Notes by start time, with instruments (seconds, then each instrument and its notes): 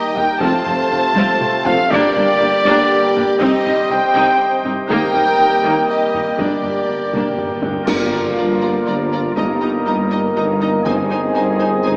Already playing: trombone section D#3 G3, french horn section A#3 G4, pipe organ D#4 G4 A#4 G5, violin section G4 D#5, trumpet section D#5
0.14 double bass section D#2, tuba D#2, cello section D#2, viola section D#4 G4, violin section A#4 G5, trumpet section G5, taiko low-mid
0.40 tuba F1, double bass section F1, cello section F2, trombone section C3 A3, pipe organ C4 A4 C5 F5, french horn section C4 F4, viola section C4 F4, violin section C5 A5, trumpet section A5, taiko
0.65 tuba F1, double bass section F1, cello section F2, viola section C4 F4, taiko low-mid
0.90 tuba F1, double bass section F1, cello section F2, viola section C4 F4
1.15 double bass section F1, tuba F1, cello section F2, viola section C4 F4, taiko high
1.41 taiko mid
1.65 tuba F1, double bass section F1, cello section F2, viola section C4 F4, violin section A4 F5, trumpet section F5, taiko low
1.89 tuba G1, double bass section G1, cello section G2, trombone section D3 G3, french horn section A#3 G4, viola section A#3 D4, pipe organ D4 G4 A#4 G5, violin section G4 D5, trumpet section D5, taiko
2.14 tuba G1, double bass section G1, cello section G2, viola section A#3 D4, taiko low-mid
2.40 tuba G1, double bass section G1, cello section G2, viola section A#3 D4
2.65 tuba G1, double bass section G1, cello section G2, viola section A#3 D4
3.14 tuba G1, double bass section G1, cello section G2, viola section A#3 D4, taiko low-mid
3.39 double bass section C2, tuba C2, cello section C2, trombone section C3, french horn section D3, viola section C4 D#4, violin section G4 D#5, pipe organ C5 D#5, trumpet section D#5, taiko
3.65 double bass section C2, cello section C2, tuba C2, viola section C4 D#4, taiko low-mid
3.89 double bass section C2, tuba C2, cello section C2, viola section C4 D#4, violin section C5 G5, trumpet section G5
4.14 double bass section C2, cello section C2, tuba C2, viola section C4 D#4
4.64 cello section C2, tuba C2, double bass section C2, viola section C4 D#4, taiko low-mid
4.87 double bass section D#2, cello section D#2, tuba D#2, trombone section G3, viola section A#3 D#4, french horn section A#3 G4, pipe organ A#4, violin section A#4 G5, trumpet section G5, taiko
5.14 double bass section D#2, cello section D#2, tuba D#2, viola section A#3 D#4, taiko low-mid
5.39 cello section D#2, double bass section D#2, tuba D#2, viola section A#3 D#4
5.64 double bass section D#2, cello section D#2, tuba D#2, viola section A#3 D#4
5.89 violin section G4 D#5, trumpet section D#5
6.13 cello section D#2, double bass section D#2, tuba D#2, viola section A#3 D#4, taiko low-mid
6.35 tuba G1, double bass section G1, timpani G2, cello section G2, trombone section D3, viola section A#3 D4, pipe organ D4, violin section G4 D5, trumpet section D5, taiko
6.45 timpani G2
6.53 timpani G2
6.61 double bass section G1, tuba G1, timpani G2, cello section G2, viola section A#3 D4, taiko low-mid
6.69 timpani G2
6.77 timpani G2
6.84 timpani G2, cello section G2
6.88 tuba G1, double bass section G1, timpani G2, viola section A#3 D4
6.98 timpani G2
7.05 timpani G2
7.12 tuba G1, double bass section G1, timpani G2, cello section G2, viola section A#3 D4, taiko mid
7.19 timpani G2
7.27 timpani G2
7.34 timpani G2
7.38 timpani G2, taiko low-mid
7.49 timpani G2
7.57 timpani G2
7.62 tuba G1, double bass section G1, cello section G2, timpani G2, viola section A#3 D4, taiko low
7.73 timpani G2
7.85 tuba G1, double bass section G1, cello section G2, timpani G2, trombone section D3 F3, pipe organ A#3 F4 A#4 D5, french horn section A#3 F4, viola section F4, violin section D5 A#5, concert bass drum, taiko, crash
7.89 trumpet section A#4
8.12 viola section F4, violin section D5 A#5
8.37 tuba G1, double bass section G1, cello section G2, viola section F4, violin section D5 A#5
8.61 viola section F4, violin section D5 A#5
8.87 tuba G1, double bass section G1, cello section G2, viola section F4, violin section D5 A#5
9.12 viola section F4, violin section D5 A#5
9.36 tuba G1, double bass section G1, cello section G2, trombone section D#3 G3, viola section D#4, pipe organ D#4 D#5, french horn section D#4, violin section D#5 A#5, taiko
9.61 viola section D#4, violin section D#5 A#5
9.86 tuba G1, double bass section G1, cello section G2, viola section D#4, violin section D#5 A#5
10.11 viola section D#4, violin section D#5 A#5
10.35 tuba G1, double bass section G1, cello section G2, viola section D#4, violin section D#5 A#5
10.61 viola section D#4, violin section D#5 A#5
10.83 tuba G1, cello section G2, timpani G2, pipe organ C4 G#4, french horn section C4, viola section D#4, trombone section G#4, trumpet section G#4, violin section C5 G#5, taiko
10.87 double bass section G1
11.10 viola section D#4, violin section C5 G#5
11.35 tuba G1, double bass section G1, cello section G2, viola section D#4, violin section C5 G#5
11.59 viola section D#4, violin section C5 G#5
11.83 tuba G1, double bass section G1, cello section G2, viola section D#4, violin section C5 G#5